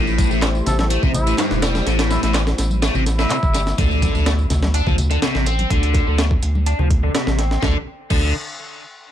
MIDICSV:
0, 0, Header, 1, 7, 480
1, 0, Start_track
1, 0, Tempo, 480000
1, 1864, Time_signature, 4, 2, 24, 8
1, 9118, End_track
2, 0, Start_track
2, 0, Title_t, "Analog synth pad"
2, 0, Program_c, 0, 89
2, 0, Note_on_c, 0, 57, 81
2, 0, Note_on_c, 0, 64, 73
2, 0, Note_on_c, 0, 67, 75
2, 0, Note_on_c, 0, 72, 86
2, 3745, Note_off_c, 0, 64, 0
2, 3745, Note_off_c, 0, 67, 0
2, 3746, Note_off_c, 0, 57, 0
2, 3746, Note_off_c, 0, 72, 0
2, 9118, End_track
3, 0, Start_track
3, 0, Title_t, "Muted trumpet"
3, 0, Program_c, 1, 59
3, 666, Note_on_c, 1, 69, 95
3, 745, Note_off_c, 1, 69, 0
3, 792, Note_on_c, 1, 69, 79
3, 864, Note_off_c, 1, 69, 0
3, 1144, Note_on_c, 1, 64, 97
3, 1356, Note_off_c, 1, 64, 0
3, 2107, Note_on_c, 1, 64, 93
3, 2186, Note_off_c, 1, 64, 0
3, 2231, Note_on_c, 1, 64, 81
3, 2303, Note_off_c, 1, 64, 0
3, 3187, Note_on_c, 1, 64, 99
3, 3783, Note_off_c, 1, 64, 0
3, 9118, End_track
4, 0, Start_track
4, 0, Title_t, "Overdriven electric guitar"
4, 0, Program_c, 2, 29
4, 0, Note_on_c, 2, 45, 102
4, 295, Note_off_c, 2, 45, 0
4, 310, Note_on_c, 2, 45, 78
4, 413, Note_off_c, 2, 45, 0
4, 423, Note_on_c, 2, 52, 100
4, 475, Note_off_c, 2, 52, 0
4, 904, Note_on_c, 2, 57, 104
4, 1016, Note_off_c, 2, 57, 0
4, 1027, Note_on_c, 2, 48, 102
4, 1106, Note_off_c, 2, 48, 0
4, 1268, Note_on_c, 2, 45, 103
4, 1347, Note_off_c, 2, 45, 0
4, 1386, Note_on_c, 2, 43, 101
4, 1613, Note_off_c, 2, 43, 0
4, 1625, Note_on_c, 2, 55, 77
4, 1853, Note_off_c, 2, 55, 0
4, 1865, Note_on_c, 2, 45, 101
4, 2217, Note_off_c, 2, 45, 0
4, 2229, Note_on_c, 2, 45, 78
4, 2332, Note_off_c, 2, 45, 0
4, 2347, Note_on_c, 2, 52, 103
4, 2397, Note_off_c, 2, 52, 0
4, 2825, Note_on_c, 2, 57, 105
4, 2937, Note_off_c, 2, 57, 0
4, 2952, Note_on_c, 2, 48, 102
4, 3029, Note_off_c, 2, 48, 0
4, 3192, Note_on_c, 2, 45, 77
4, 3300, Note_off_c, 2, 45, 0
4, 3306, Note_on_c, 2, 48, 83
4, 3356, Note_off_c, 2, 48, 0
4, 3547, Note_on_c, 2, 55, 77
4, 3597, Note_off_c, 2, 55, 0
4, 3785, Note_on_c, 2, 50, 99
4, 4137, Note_off_c, 2, 50, 0
4, 4149, Note_on_c, 2, 50, 74
4, 4253, Note_off_c, 2, 50, 0
4, 4266, Note_on_c, 2, 57, 99
4, 4316, Note_off_c, 2, 57, 0
4, 4743, Note_on_c, 2, 62, 103
4, 4856, Note_off_c, 2, 62, 0
4, 4864, Note_on_c, 2, 53, 99
4, 4945, Note_off_c, 2, 53, 0
4, 5107, Note_on_c, 2, 50, 96
4, 5187, Note_off_c, 2, 50, 0
4, 5224, Note_on_c, 2, 48, 98
4, 5452, Note_off_c, 2, 48, 0
4, 5467, Note_on_c, 2, 60, 77
4, 5694, Note_off_c, 2, 60, 0
4, 5704, Note_on_c, 2, 50, 99
4, 6057, Note_off_c, 2, 50, 0
4, 6073, Note_on_c, 2, 50, 77
4, 6175, Note_off_c, 2, 50, 0
4, 6184, Note_on_c, 2, 57, 100
4, 6235, Note_off_c, 2, 57, 0
4, 6667, Note_on_c, 2, 62, 103
4, 6778, Note_off_c, 2, 62, 0
4, 6792, Note_on_c, 2, 53, 98
4, 6869, Note_off_c, 2, 53, 0
4, 7035, Note_on_c, 2, 50, 99
4, 7110, Note_off_c, 2, 50, 0
4, 7148, Note_on_c, 2, 48, 98
4, 7374, Note_off_c, 2, 48, 0
4, 7389, Note_on_c, 2, 60, 75
4, 7615, Note_off_c, 2, 60, 0
4, 7626, Note_on_c, 2, 50, 91
4, 7763, Note_off_c, 2, 50, 0
4, 8105, Note_on_c, 2, 50, 89
4, 8328, Note_off_c, 2, 50, 0
4, 9118, End_track
5, 0, Start_track
5, 0, Title_t, "Sub bass"
5, 0, Program_c, 3, 38
5, 0, Note_on_c, 3, 33, 100
5, 258, Note_off_c, 3, 33, 0
5, 306, Note_on_c, 3, 33, 103
5, 616, Note_off_c, 3, 33, 0
5, 662, Note_on_c, 3, 33, 96
5, 978, Note_off_c, 3, 33, 0
5, 1030, Note_on_c, 3, 33, 102
5, 1338, Note_off_c, 3, 33, 0
5, 1505, Note_on_c, 3, 28, 105
5, 1816, Note_off_c, 3, 28, 0
5, 1863, Note_on_c, 3, 33, 102
5, 2178, Note_off_c, 3, 33, 0
5, 2229, Note_on_c, 3, 33, 100
5, 2538, Note_off_c, 3, 33, 0
5, 2584, Note_on_c, 3, 33, 93
5, 2899, Note_off_c, 3, 33, 0
5, 2947, Note_on_c, 3, 33, 107
5, 3257, Note_off_c, 3, 33, 0
5, 3427, Note_on_c, 3, 31, 84
5, 3737, Note_off_c, 3, 31, 0
5, 3781, Note_on_c, 3, 38, 100
5, 4097, Note_off_c, 3, 38, 0
5, 4147, Note_on_c, 3, 38, 103
5, 4457, Note_off_c, 3, 38, 0
5, 4499, Note_on_c, 3, 38, 92
5, 4816, Note_off_c, 3, 38, 0
5, 4866, Note_on_c, 3, 38, 102
5, 5176, Note_off_c, 3, 38, 0
5, 5346, Note_on_c, 3, 33, 98
5, 5656, Note_off_c, 3, 33, 0
5, 5704, Note_on_c, 3, 38, 102
5, 6018, Note_off_c, 3, 38, 0
5, 6068, Note_on_c, 3, 38, 103
5, 6377, Note_off_c, 3, 38, 0
5, 6423, Note_on_c, 3, 38, 92
5, 6738, Note_off_c, 3, 38, 0
5, 6787, Note_on_c, 3, 38, 108
5, 7097, Note_off_c, 3, 38, 0
5, 7267, Note_on_c, 3, 33, 101
5, 7576, Note_off_c, 3, 33, 0
5, 7624, Note_on_c, 3, 38, 98
5, 7762, Note_off_c, 3, 38, 0
5, 8105, Note_on_c, 3, 38, 103
5, 8328, Note_off_c, 3, 38, 0
5, 9118, End_track
6, 0, Start_track
6, 0, Title_t, "Impact"
6, 0, Program_c, 4, 103
6, 3783, Note_on_c, 4, 60, 75
6, 5703, Note_off_c, 4, 60, 0
6, 9118, End_track
7, 0, Start_track
7, 0, Title_t, "Drums"
7, 71, Note_on_c, 9, 54, 21
7, 171, Note_off_c, 9, 54, 0
7, 184, Note_on_c, 9, 36, 96
7, 185, Note_on_c, 9, 42, 70
7, 185, Note_on_c, 9, 54, 76
7, 191, Note_on_c, 9, 63, 63
7, 284, Note_off_c, 9, 36, 0
7, 285, Note_off_c, 9, 42, 0
7, 285, Note_off_c, 9, 54, 0
7, 291, Note_off_c, 9, 63, 0
7, 305, Note_on_c, 9, 60, 59
7, 310, Note_on_c, 9, 54, 33
7, 405, Note_off_c, 9, 60, 0
7, 410, Note_off_c, 9, 54, 0
7, 423, Note_on_c, 9, 38, 122
7, 423, Note_on_c, 9, 42, 91
7, 424, Note_on_c, 9, 39, 100
7, 424, Note_on_c, 9, 54, 41
7, 523, Note_off_c, 9, 38, 0
7, 523, Note_off_c, 9, 42, 0
7, 524, Note_off_c, 9, 39, 0
7, 524, Note_off_c, 9, 54, 0
7, 549, Note_on_c, 9, 54, 21
7, 649, Note_off_c, 9, 54, 0
7, 664, Note_on_c, 9, 54, 76
7, 666, Note_on_c, 9, 38, 41
7, 666, Note_on_c, 9, 42, 72
7, 666, Note_on_c, 9, 64, 89
7, 764, Note_off_c, 9, 54, 0
7, 766, Note_off_c, 9, 38, 0
7, 766, Note_off_c, 9, 42, 0
7, 766, Note_off_c, 9, 64, 0
7, 788, Note_on_c, 9, 54, 31
7, 788, Note_on_c, 9, 63, 98
7, 789, Note_on_c, 9, 38, 59
7, 789, Note_on_c, 9, 60, 88
7, 888, Note_off_c, 9, 54, 0
7, 888, Note_off_c, 9, 63, 0
7, 889, Note_off_c, 9, 38, 0
7, 889, Note_off_c, 9, 60, 0
7, 904, Note_on_c, 9, 42, 92
7, 905, Note_on_c, 9, 54, 43
7, 1004, Note_off_c, 9, 42, 0
7, 1005, Note_off_c, 9, 54, 0
7, 1027, Note_on_c, 9, 64, 91
7, 1029, Note_on_c, 9, 36, 100
7, 1029, Note_on_c, 9, 54, 21
7, 1127, Note_off_c, 9, 64, 0
7, 1129, Note_off_c, 9, 36, 0
7, 1129, Note_off_c, 9, 54, 0
7, 1136, Note_on_c, 9, 64, 98
7, 1145, Note_on_c, 9, 42, 69
7, 1145, Note_on_c, 9, 54, 73
7, 1146, Note_on_c, 9, 60, 53
7, 1236, Note_off_c, 9, 64, 0
7, 1245, Note_off_c, 9, 42, 0
7, 1245, Note_off_c, 9, 54, 0
7, 1246, Note_off_c, 9, 60, 0
7, 1270, Note_on_c, 9, 42, 47
7, 1271, Note_on_c, 9, 54, 32
7, 1370, Note_off_c, 9, 42, 0
7, 1371, Note_off_c, 9, 54, 0
7, 1383, Note_on_c, 9, 39, 100
7, 1383, Note_on_c, 9, 54, 42
7, 1384, Note_on_c, 9, 38, 120
7, 1384, Note_on_c, 9, 42, 93
7, 1483, Note_off_c, 9, 39, 0
7, 1483, Note_off_c, 9, 54, 0
7, 1484, Note_off_c, 9, 38, 0
7, 1484, Note_off_c, 9, 42, 0
7, 1508, Note_on_c, 9, 54, 21
7, 1510, Note_on_c, 9, 38, 55
7, 1608, Note_off_c, 9, 54, 0
7, 1610, Note_off_c, 9, 38, 0
7, 1621, Note_on_c, 9, 60, 89
7, 1622, Note_on_c, 9, 54, 74
7, 1624, Note_on_c, 9, 38, 108
7, 1624, Note_on_c, 9, 42, 83
7, 1721, Note_off_c, 9, 60, 0
7, 1722, Note_off_c, 9, 54, 0
7, 1724, Note_off_c, 9, 38, 0
7, 1724, Note_off_c, 9, 42, 0
7, 1750, Note_on_c, 9, 54, 32
7, 1751, Note_on_c, 9, 38, 48
7, 1752, Note_on_c, 9, 63, 81
7, 1850, Note_off_c, 9, 54, 0
7, 1851, Note_off_c, 9, 38, 0
7, 1852, Note_off_c, 9, 63, 0
7, 1866, Note_on_c, 9, 38, 38
7, 1866, Note_on_c, 9, 42, 59
7, 1866, Note_on_c, 9, 54, 43
7, 1966, Note_off_c, 9, 38, 0
7, 1966, Note_off_c, 9, 42, 0
7, 1966, Note_off_c, 9, 54, 0
7, 1990, Note_on_c, 9, 38, 112
7, 1990, Note_on_c, 9, 42, 85
7, 1991, Note_on_c, 9, 60, 57
7, 1993, Note_on_c, 9, 54, 22
7, 2090, Note_off_c, 9, 38, 0
7, 2090, Note_off_c, 9, 42, 0
7, 2091, Note_off_c, 9, 60, 0
7, 2092, Note_off_c, 9, 54, 0
7, 2105, Note_on_c, 9, 63, 61
7, 2106, Note_on_c, 9, 38, 50
7, 2106, Note_on_c, 9, 54, 79
7, 2205, Note_off_c, 9, 63, 0
7, 2206, Note_off_c, 9, 38, 0
7, 2206, Note_off_c, 9, 54, 0
7, 2230, Note_on_c, 9, 38, 38
7, 2230, Note_on_c, 9, 42, 64
7, 2230, Note_on_c, 9, 54, 34
7, 2330, Note_off_c, 9, 38, 0
7, 2330, Note_off_c, 9, 42, 0
7, 2330, Note_off_c, 9, 54, 0
7, 2344, Note_on_c, 9, 38, 110
7, 2344, Note_on_c, 9, 42, 84
7, 2345, Note_on_c, 9, 39, 100
7, 2345, Note_on_c, 9, 54, 42
7, 2444, Note_off_c, 9, 38, 0
7, 2444, Note_off_c, 9, 42, 0
7, 2445, Note_off_c, 9, 39, 0
7, 2445, Note_off_c, 9, 54, 0
7, 2469, Note_on_c, 9, 38, 49
7, 2469, Note_on_c, 9, 54, 21
7, 2475, Note_on_c, 9, 60, 82
7, 2569, Note_off_c, 9, 38, 0
7, 2569, Note_off_c, 9, 54, 0
7, 2575, Note_off_c, 9, 60, 0
7, 2583, Note_on_c, 9, 54, 78
7, 2585, Note_on_c, 9, 38, 39
7, 2585, Note_on_c, 9, 42, 63
7, 2683, Note_off_c, 9, 54, 0
7, 2685, Note_off_c, 9, 38, 0
7, 2685, Note_off_c, 9, 42, 0
7, 2706, Note_on_c, 9, 63, 86
7, 2708, Note_on_c, 9, 54, 31
7, 2806, Note_off_c, 9, 63, 0
7, 2808, Note_off_c, 9, 54, 0
7, 2821, Note_on_c, 9, 60, 60
7, 2824, Note_on_c, 9, 38, 107
7, 2824, Note_on_c, 9, 42, 81
7, 2825, Note_on_c, 9, 54, 43
7, 2921, Note_off_c, 9, 60, 0
7, 2924, Note_off_c, 9, 38, 0
7, 2924, Note_off_c, 9, 42, 0
7, 2925, Note_off_c, 9, 54, 0
7, 2939, Note_on_c, 9, 64, 88
7, 2950, Note_on_c, 9, 54, 22
7, 3039, Note_off_c, 9, 64, 0
7, 3050, Note_off_c, 9, 54, 0
7, 3063, Note_on_c, 9, 54, 77
7, 3064, Note_on_c, 9, 38, 35
7, 3064, Note_on_c, 9, 42, 63
7, 3163, Note_off_c, 9, 54, 0
7, 3164, Note_off_c, 9, 38, 0
7, 3164, Note_off_c, 9, 42, 0
7, 3187, Note_on_c, 9, 54, 33
7, 3190, Note_on_c, 9, 38, 56
7, 3287, Note_off_c, 9, 54, 0
7, 3290, Note_off_c, 9, 38, 0
7, 3303, Note_on_c, 9, 39, 100
7, 3303, Note_on_c, 9, 54, 44
7, 3304, Note_on_c, 9, 42, 82
7, 3304, Note_on_c, 9, 60, 92
7, 3403, Note_off_c, 9, 39, 0
7, 3403, Note_off_c, 9, 54, 0
7, 3404, Note_off_c, 9, 42, 0
7, 3404, Note_off_c, 9, 60, 0
7, 3429, Note_on_c, 9, 36, 94
7, 3429, Note_on_c, 9, 54, 23
7, 3529, Note_off_c, 9, 36, 0
7, 3529, Note_off_c, 9, 54, 0
7, 3544, Note_on_c, 9, 54, 74
7, 3545, Note_on_c, 9, 38, 45
7, 3545, Note_on_c, 9, 42, 73
7, 3644, Note_off_c, 9, 54, 0
7, 3645, Note_off_c, 9, 38, 0
7, 3645, Note_off_c, 9, 42, 0
7, 3661, Note_on_c, 9, 60, 52
7, 3668, Note_on_c, 9, 38, 38
7, 3670, Note_on_c, 9, 54, 34
7, 3761, Note_off_c, 9, 60, 0
7, 3768, Note_off_c, 9, 38, 0
7, 3770, Note_off_c, 9, 54, 0
7, 3783, Note_on_c, 9, 36, 108
7, 3784, Note_on_c, 9, 42, 86
7, 3784, Note_on_c, 9, 54, 43
7, 3786, Note_on_c, 9, 60, 57
7, 3883, Note_off_c, 9, 36, 0
7, 3883, Note_off_c, 9, 42, 0
7, 3884, Note_off_c, 9, 54, 0
7, 3886, Note_off_c, 9, 60, 0
7, 3909, Note_on_c, 9, 54, 21
7, 4009, Note_off_c, 9, 54, 0
7, 4019, Note_on_c, 9, 63, 67
7, 4023, Note_on_c, 9, 36, 98
7, 4023, Note_on_c, 9, 54, 80
7, 4024, Note_on_c, 9, 42, 67
7, 4119, Note_off_c, 9, 63, 0
7, 4123, Note_off_c, 9, 36, 0
7, 4123, Note_off_c, 9, 54, 0
7, 4124, Note_off_c, 9, 42, 0
7, 4148, Note_on_c, 9, 54, 34
7, 4248, Note_off_c, 9, 54, 0
7, 4263, Note_on_c, 9, 38, 116
7, 4263, Note_on_c, 9, 42, 88
7, 4263, Note_on_c, 9, 54, 43
7, 4264, Note_on_c, 9, 60, 80
7, 4363, Note_off_c, 9, 38, 0
7, 4363, Note_off_c, 9, 42, 0
7, 4363, Note_off_c, 9, 54, 0
7, 4364, Note_off_c, 9, 60, 0
7, 4387, Note_on_c, 9, 54, 22
7, 4487, Note_off_c, 9, 54, 0
7, 4499, Note_on_c, 9, 64, 87
7, 4501, Note_on_c, 9, 54, 80
7, 4502, Note_on_c, 9, 38, 38
7, 4502, Note_on_c, 9, 42, 69
7, 4599, Note_off_c, 9, 64, 0
7, 4601, Note_off_c, 9, 54, 0
7, 4602, Note_off_c, 9, 38, 0
7, 4602, Note_off_c, 9, 42, 0
7, 4625, Note_on_c, 9, 38, 58
7, 4626, Note_on_c, 9, 54, 32
7, 4631, Note_on_c, 9, 60, 53
7, 4632, Note_on_c, 9, 63, 90
7, 4725, Note_off_c, 9, 38, 0
7, 4726, Note_off_c, 9, 54, 0
7, 4731, Note_off_c, 9, 60, 0
7, 4732, Note_off_c, 9, 63, 0
7, 4741, Note_on_c, 9, 54, 43
7, 4742, Note_on_c, 9, 42, 90
7, 4841, Note_off_c, 9, 54, 0
7, 4842, Note_off_c, 9, 42, 0
7, 4864, Note_on_c, 9, 64, 101
7, 4867, Note_on_c, 9, 54, 22
7, 4868, Note_on_c, 9, 36, 95
7, 4964, Note_off_c, 9, 64, 0
7, 4967, Note_off_c, 9, 36, 0
7, 4967, Note_off_c, 9, 54, 0
7, 4981, Note_on_c, 9, 42, 69
7, 4983, Note_on_c, 9, 54, 77
7, 4983, Note_on_c, 9, 64, 89
7, 5081, Note_off_c, 9, 42, 0
7, 5083, Note_off_c, 9, 54, 0
7, 5083, Note_off_c, 9, 64, 0
7, 5104, Note_on_c, 9, 60, 86
7, 5107, Note_on_c, 9, 42, 46
7, 5107, Note_on_c, 9, 54, 34
7, 5204, Note_off_c, 9, 60, 0
7, 5207, Note_off_c, 9, 42, 0
7, 5207, Note_off_c, 9, 54, 0
7, 5222, Note_on_c, 9, 38, 123
7, 5222, Note_on_c, 9, 42, 89
7, 5225, Note_on_c, 9, 54, 44
7, 5322, Note_off_c, 9, 38, 0
7, 5322, Note_off_c, 9, 42, 0
7, 5325, Note_off_c, 9, 54, 0
7, 5348, Note_on_c, 9, 54, 23
7, 5349, Note_on_c, 9, 38, 53
7, 5448, Note_off_c, 9, 54, 0
7, 5449, Note_off_c, 9, 38, 0
7, 5462, Note_on_c, 9, 54, 73
7, 5465, Note_on_c, 9, 42, 73
7, 5465, Note_on_c, 9, 60, 61
7, 5562, Note_off_c, 9, 54, 0
7, 5565, Note_off_c, 9, 42, 0
7, 5565, Note_off_c, 9, 60, 0
7, 5586, Note_on_c, 9, 63, 83
7, 5588, Note_on_c, 9, 54, 32
7, 5590, Note_on_c, 9, 42, 43
7, 5686, Note_off_c, 9, 63, 0
7, 5688, Note_off_c, 9, 54, 0
7, 5690, Note_off_c, 9, 42, 0
7, 5703, Note_on_c, 9, 54, 44
7, 5704, Note_on_c, 9, 36, 109
7, 5706, Note_on_c, 9, 42, 88
7, 5803, Note_off_c, 9, 54, 0
7, 5804, Note_off_c, 9, 36, 0
7, 5806, Note_off_c, 9, 42, 0
7, 5830, Note_on_c, 9, 42, 46
7, 5830, Note_on_c, 9, 54, 22
7, 5930, Note_off_c, 9, 42, 0
7, 5930, Note_off_c, 9, 54, 0
7, 5936, Note_on_c, 9, 60, 87
7, 5944, Note_on_c, 9, 36, 95
7, 5944, Note_on_c, 9, 54, 79
7, 5945, Note_on_c, 9, 42, 70
7, 6036, Note_off_c, 9, 60, 0
7, 6044, Note_off_c, 9, 36, 0
7, 6044, Note_off_c, 9, 54, 0
7, 6045, Note_off_c, 9, 42, 0
7, 6068, Note_on_c, 9, 54, 35
7, 6168, Note_off_c, 9, 54, 0
7, 6184, Note_on_c, 9, 38, 118
7, 6184, Note_on_c, 9, 42, 90
7, 6184, Note_on_c, 9, 54, 43
7, 6284, Note_off_c, 9, 38, 0
7, 6284, Note_off_c, 9, 42, 0
7, 6284, Note_off_c, 9, 54, 0
7, 6305, Note_on_c, 9, 60, 58
7, 6309, Note_on_c, 9, 36, 95
7, 6310, Note_on_c, 9, 54, 23
7, 6405, Note_off_c, 9, 60, 0
7, 6409, Note_off_c, 9, 36, 0
7, 6410, Note_off_c, 9, 54, 0
7, 6425, Note_on_c, 9, 54, 78
7, 6426, Note_on_c, 9, 42, 70
7, 6525, Note_off_c, 9, 54, 0
7, 6526, Note_off_c, 9, 42, 0
7, 6550, Note_on_c, 9, 54, 31
7, 6552, Note_on_c, 9, 63, 97
7, 6650, Note_off_c, 9, 54, 0
7, 6652, Note_off_c, 9, 63, 0
7, 6664, Note_on_c, 9, 42, 90
7, 6666, Note_on_c, 9, 54, 43
7, 6764, Note_off_c, 9, 42, 0
7, 6766, Note_off_c, 9, 54, 0
7, 6790, Note_on_c, 9, 64, 94
7, 6791, Note_on_c, 9, 54, 22
7, 6793, Note_on_c, 9, 60, 87
7, 6890, Note_off_c, 9, 64, 0
7, 6891, Note_off_c, 9, 54, 0
7, 6893, Note_off_c, 9, 60, 0
7, 6904, Note_on_c, 9, 54, 79
7, 6905, Note_on_c, 9, 36, 96
7, 6906, Note_on_c, 9, 42, 69
7, 7004, Note_off_c, 9, 54, 0
7, 7005, Note_off_c, 9, 36, 0
7, 7006, Note_off_c, 9, 42, 0
7, 7031, Note_on_c, 9, 54, 35
7, 7131, Note_off_c, 9, 54, 0
7, 7144, Note_on_c, 9, 60, 53
7, 7146, Note_on_c, 9, 38, 115
7, 7146, Note_on_c, 9, 42, 90
7, 7244, Note_off_c, 9, 60, 0
7, 7246, Note_off_c, 9, 38, 0
7, 7246, Note_off_c, 9, 42, 0
7, 7271, Note_on_c, 9, 38, 56
7, 7371, Note_off_c, 9, 38, 0
7, 7386, Note_on_c, 9, 38, 44
7, 7386, Note_on_c, 9, 42, 72
7, 7486, Note_off_c, 9, 38, 0
7, 7486, Note_off_c, 9, 42, 0
7, 7511, Note_on_c, 9, 38, 38
7, 7611, Note_off_c, 9, 38, 0
7, 7625, Note_on_c, 9, 36, 107
7, 7626, Note_on_c, 9, 38, 82
7, 7725, Note_off_c, 9, 36, 0
7, 7726, Note_off_c, 9, 38, 0
7, 8104, Note_on_c, 9, 49, 86
7, 8105, Note_on_c, 9, 36, 117
7, 8204, Note_off_c, 9, 49, 0
7, 8205, Note_off_c, 9, 36, 0
7, 9118, End_track
0, 0, End_of_file